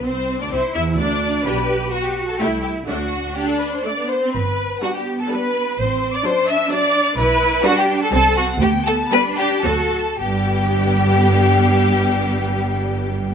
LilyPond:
<<
  \new Staff \with { instrumentName = "Violin section" } { \time 3/4 \key g \major \tempo 4 = 124 c'''8. d'''16 c'''8 e'''8 d'''4 | b''4 fis''16 g''8 a''16 g''8 g''8 | fis''4 g''16 a''16 b''16 c'''16 d'''8 c'''8 | b''4 fis''16 g''8 a''16 b''4 |
c'''8. d'''16 c'''8 e'''8 d'''4 | b''4 fis''16 g''8 a''16 a''8 fis''8 | g''8 a''8 b''8 g''8 a''4 | g''2.~ |
g''2. | }
  \new Staff \with { instrumentName = "Violin section" } { \time 3/4 \key g \major c''8. d''16 c''8 e''8 d''4 | b'4 fis'16 g'8 a'16 g'8 g'8 | fis'4 g'16 a'16 b'16 c''16 d''8 c''8 | b'4 fis'16 g'8 a'16 b'4 |
c''8. d''16 c''8 e''8 d''4 | b'4 fis'16 g'8 a'16 a'8 fis'8 | g'8 a'8 b'8 g'8 a'4 | g'2.~ |
g'2. | }
  \new Staff \with { instrumentName = "Cello section" } { \time 3/4 \key g \major c'4 e'4 d'4 | g'4 fis'4 e'4 | d'2~ d'8 r8 | r4 b2 |
c'4 d'2 | e'4 d'4 c'4 | b4 d'4 fis'8 r8 | g,2.~ |
g,2. | }
  \new Staff \with { instrumentName = "Viola section" } { \time 3/4 \key g \major c'8. d'16 c'8 e'8 d'4 | <d' g'>8 r4. <a e'>8 r8 | <a d'>8 r8 d'4 a16 b8 c'16 | r4 <g d'>4 <g d'>4 |
r4 <fis d'>4 <fis d'>4 | r4 <g d'>4 <g c'>4 | r4 <g b>4 <fis c'>4 | <g b>2.~ |
<g b>2. | }
  \new Staff \with { instrumentName = "Double bass section" } { \clef bass \time 3/4 \key g \major c,8. d,16 c,8 e,8 d,4 | b,,4 r4 c,4 | d,4 r2 | g,,4 r2 |
a,,4 r2 | b,,4 r4 c,4 | d,4 r4 d,4 | g,,2.~ |
g,,2. | }
>>